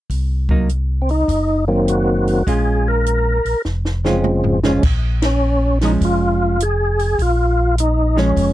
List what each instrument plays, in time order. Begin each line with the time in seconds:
0.10 tonewheel organ C2, kick, open hi-hat
0.49 hollow-body jazz guitar F#3 A#3 D#4, kick
0.69 closed hi-hat
1.02 tonewheel organ C4
1.09 tonewheel organ D#4, open hi-hat
1.28 tonewheel organ F#1, kick, open hi-hat
1.68 tonewheel organ D#3 F#3 A#3 C4
1.88 tonewheel organ F#4, closed hi-hat
2.27 open hi-hat
2.47 tonewheel organ A#1 G#4, hollow-body jazz guitar G#3 C#4 F4, kick, open hi-hat
2.88 tonewheel organ A#4
3.06 closed hi-hat
3.45 tonewheel organ A#1, open hi-hat
3.65 tonewheel organ F1, snare
3.85 snare
4.04 tonewheel organ C#3 F3 G#3 C4, hollow-body jazz guitar G#3 C#4 F4, snare
4.24 high tom
4.44 floor tom
4.63 tonewheel organ C#3 F3 G#3 C#4, hollow-body jazz guitar G#3 C#4 F4, snare
4.83 tonewheel organ A#1, kick, crash
5.22 tonewheel organ C#4, snare, ride
5.81 hollow-body jazz guitar F3 G#3 C#4, tonewheel organ D#4, snare, open hi-hat
6.01 tonewheel organ F1 F4, kick, open hi-hat
6.60 tonewheel organ G#4, closed hi-hat
6.99 open hi-hat
7.18 tonewheel organ A#1 F4, kick, open hi-hat
7.78 tonewheel organ D#4, closed hi-hat
8.16 hollow-body jazz guitar F3 G#3 C#4, tonewheel organ C#4, snare
8.36 tonewheel organ F1, kick, open hi-hat